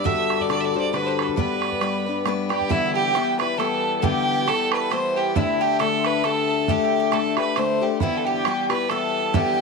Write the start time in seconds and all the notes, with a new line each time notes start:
Already playing: G2 G3
0.04 D3 D4 F#4 A4 E5 E6, bodhran
0.30 bodhran
0.39 D5 D6, bodhran
0.49 D3 D4 F#4 A4 D5 D6, bodhran
0.61 D5 E5 D6
0.74 D4 F#4 A4 C5
0.79 D5
0.92 D3 D4 F#4 A4 B4 B5, bodhran
1.06 B4 C5 B5
1.19 A4 B4 B5, bodhran
1.24 B4
1.28 bodhran
1.36 G3 B3 D4 B4 B5, bodhran
1.62 bodhran
1.72 bodhran
1.81 G3 B3 D4 B4, bodhran
2.06 B3 D4 B4
2.25 G3 B3 D4 B4, bodhran
2.49 B3 D4 G4 B4 G5, bodhran
2.61 bodhran
2.69 G2 D3 E3 G3 B3 E4 G4 E5, bodhran
2.85 A4 A5
2.95 G4 G5
3.14 E3 G3 B3 G4, bodhran
3.38 E3 G3 B3 G4 B4 B5, bodhran
3.57 E3 G3 B3 G4 A4 A5, bodhran
3.98 A4
4.02 G2 D3 E3 G3 B3 G4 G5, bodhran
4.47 E3 G3 B3 G4 A4 A5, bodhran
4.72 B4 B5, bodhran
4.91 E3 G3 B3 G4 C5 C6, bodhran
5.16 G4 G5
5.35 D3 A3 D4 E4 G4 E5, bodhran
5.60 G4 G5
5.79 D3 A3 D4 G4 A4 A5, bodhran
5.98 C6
6.04 B4 B5, bodhran
6.24 D3 A3 D4 G4 A4 A5, bodhran
6.50 A4
6.68 D3 A3 D4 G4 G5, bodhran
6.85 G4
7.00 G4
7.12 D3 A3 D4 G4 A4 A5, bodhran
7.37 A3 D4 G4 B4 B5, bodhran
7.56 D3 A3 D4 G4 C5 C6, bodhran
7.81 A3 D4 G4
8.00 G2 D3 E3 G3 B3 E4 G4 E5, bodhran
8.17 A4
8.25 G4 G5
8.45 E3 G3 B3 G4, bodhran
8.69 E3 G3 B3 G4 B4 B5, bodhran
8.89 E3 G3 B3 G4 A4 A5, bodhran
9.34 G2 D3 E3 G3 B3 G4 G5, bodhran